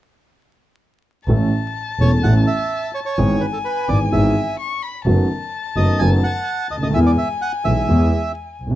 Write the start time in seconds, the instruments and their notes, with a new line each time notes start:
1.27 double bass A1, grand piano A1 A2 E3 A3 C#4 A4, violin A5
1.99 double bass E1, grand piano E1 E2 E3 A3 C#4 A4, bandoneon C#5
2.23 double bass A1, grand piano A1 A2 E3 A3 C#4 A4, bandoneon F#5
2.47 bandoneon E5
2.94 bandoneon C#5
3.05 bandoneon C#5
3.18 grand piano G#1 G#2 E3 G#3 B3 G#4, double bass G#1, violin G#5
3.40 bandoneon B4
3.53 bandoneon A4
3.65 bandoneon B4
3.88 grand piano G#1 G#2 E3 G#3 B3 G#4, double bass G#1, bandoneon D5
4.12 double bass G#1, grand piano G#1 G#2 E3 G#3 B3 G#4, bandoneon E5
4.59 violin C#6
4.82 violin B5
5.06 double bass F#1, grand piano F#2 D#3 F#3 A3 B3 F#4, violin A5
5.76 double bass F#1, grand piano F#2 D#3 F#3 A3 B3 F#4, bandoneon D#5
5.99 double bass F#1, grand piano F#2 D#3 F#3 A3 B3 F#4, bandoneon G#5
6.24 bandoneon F#5
6.71 double bass D2, bandoneon D#5
6.78 grand piano C#2
6.83 grand piano D2, bandoneon D#5
6.90 grand piano D#2
6.94 double bass E2, grand piano E2 E3 G#3 B3 G#4, bandoneon E5, violin G#5
7.06 bandoneon D5
7.18 bandoneon E5
7.42 bandoneon F#5
7.65 grand piano B1 B2 E3 G#3 B3 G#4, double bass B1, bandoneon E5
7.89 double bass E2, grand piano E2 E3 G#3 B3 G#4
8.60 double bass C2
8.67 grand piano B1
8.71 grand piano C2